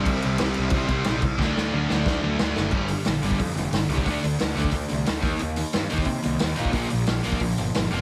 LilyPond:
<<
  \new Staff \with { instrumentName = "Distorted electric guitar" } { \clef bass \time 4/4 \key d \minor \tempo 4 = 180 <c g c' e'>4 <c g c' e'>4. <c g c' e'>4 r8 | <d fis a d'>4. <d fis a d'>4. <d fis a d'>4 | \key g \minor r1 | r1 |
r1 | r1 | }
  \new Staff \with { instrumentName = "Distorted electric guitar" } { \clef bass \time 4/4 \key d \minor <c g c'>2 <c g c'>8 <c g c'>4 r8 | <d a d'>2~ <d a d'>8 <d a d'>8 <d a d'>4 | \key g \minor <g, d g>8 <g, d>8 <g, d>8 <g, d g>8 <g, d>8 <g, d>8 <g, d>8 <g, d g>8 | <d a d'>8 <d a>8 <d a>8 <d a d'>8 <d a>8 <d a>8 <d a>8 <ees bes ees'>8 |
<ees bes>8 <ees bes>8 <ees bes>8 <ees bes ees'>8 <ees bes>8 <ees bes>8 <ees bes>8 <ees bes ees'>8 | <bes, f bes>8 <bes, f>8 <bes, f>8 <bes, f bes>8 <bes, f>8 <bes, f>8 <bes, f>8 <bes, f bes>8 | }
  \new Staff \with { instrumentName = "Overdriven electric guitar" } { \clef bass \time 4/4 \key d \minor <c g c'>4 <c g c'>4. <c g c'>4 r8 | <d a d'>4. <d a d'>4. <d a d'>4 | \key g \minor <g, d g>8 <g, d>8 <g, d>8 <g, d g>8 <g, d>8 <g, d>8 <g, d>8 <g, d g>8 | <d a d'>8 <d a>8 <d a>8 <d a d'>8 <d a>8 <d a>8 <d a>8 <ees bes ees'>8 |
<ees bes>8 <ees bes>8 <ees bes>8 <ees bes ees'>8 <ees bes>8 <ees bes>8 <ees bes>8 <ees bes ees'>8 | <bes, f bes>8 <bes, f>8 <bes, f>8 <bes, f bes>8 <bes, f>8 <bes, f>8 <bes, f>8 <bes, f bes>8 | }
  \new Staff \with { instrumentName = "Picked electric bass" } { \clef bass \time 4/4 \key d \minor c,8 c,8 c,8 c,8 c,8 c,8 bes,,8 c,8 | d,8 d,8 d,8 d,8 d,8 d,8 d,8 fis,,8 | \key g \minor g,,4 bes,,8 g,,8 f,8 f,,8 g,,8 c,8 | d,8 d,8 d,8 d,8 d,8 c,8 d,8 ees,8 |
ees,4 g,8 ees,8 c8 c,8 ees,8 bes,8 | bes,,8 bes,,8 bes,,8 bes,,8 bes,,8 g,,8 g,,8 f,,8 | }
  \new DrumStaff \with { instrumentName = "Drums" } \drummode { \time 4/4 <cymc bd>8 cymc8 <cymc sn>8 cymc8 <cymc bd>8 <cymc bd>8 <cymc sn>8 <cymc bd>8 | <bd sn>8 sn8 r8 sn8 <bd sn>4 sn8 sn8 | <cymc bd>8 hho8 <hho sn>8 hho16 bd16 <hho bd>8 hho8 <hho sn>8 hho16 bd16 | <hho bd>8 hho8 <hho sn>8 hho16 bd16 <hho bd>8 hho8 <hho sn>8 <hho bd>8 |
hho8 hho8 <hho sn>8 hho16 bd16 <hho bd>8 hho8 <hho sn>8 hho16 bd16 | <hho bd>8 hho8 <hho sn>8 hho16 bd16 <hho bd>8 hho8 <hho sn>8 hho8 | }
>>